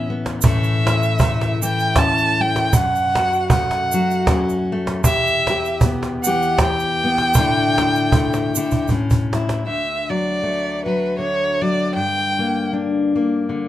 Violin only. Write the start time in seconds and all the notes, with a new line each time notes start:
0.45 E5
1.65 G5
1.98 A5
2.41 G5
2.77 F#5
3.51 F#5
5.05 E5
6.24 F#5
6.59 G5
9.67 E5
10.10 D5
10.85 B4
11.19 C#5
11.61 D5
11.95 G5